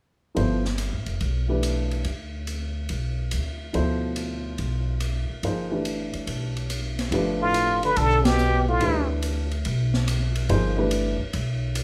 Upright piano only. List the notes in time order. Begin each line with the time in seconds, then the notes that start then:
0.35 F3 B3 E4 A4 C5
1.48 E3 A3 D4 G4 B4
3.73 B2 F3 E4 A4 C5
5.44 F3 A#3 D#4 G#4 C5
5.70 E3 A3 D4 G4 B4
7.12 F3 A3 D4 G4 B4
8.81 E3 A3 D4 G4 B4
10.49 F3 A#3 D#4 G#4 C5
10.77 E3 A3 D4 G4 B4